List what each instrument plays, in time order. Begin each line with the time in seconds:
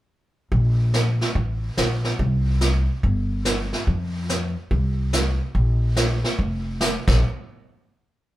0.52 upright bass A#1, brush sweep, kick
0.94 snare, hi-hat pedal
1.21 snare
1.35 upright bass A1, brush sweep, kick
1.77 upright bass A#1, snare, hi-hat pedal
2.04 snare
2.19 upright bass C2, brush sweep, kick
2.61 snare, hi-hat pedal
3.03 upright bass G1, brush sweep, kick
3.45 snare, hi-hat pedal
3.73 snare
3.87 upright bass F2, brush sweep, kick
4.29 snare, hi-hat pedal
4.71 upright bass C2, brush sweep, kick
5.13 snare, hi-hat pedal
5.55 upright bass A#1, brush sweep, kick
5.96 snare, hi-hat pedal
6.24 snare
6.39 upright bass F1, brush sweep, kick
6.81 snare, hi-hat pedal
7.08 upright bass A#1, kick, snare, crash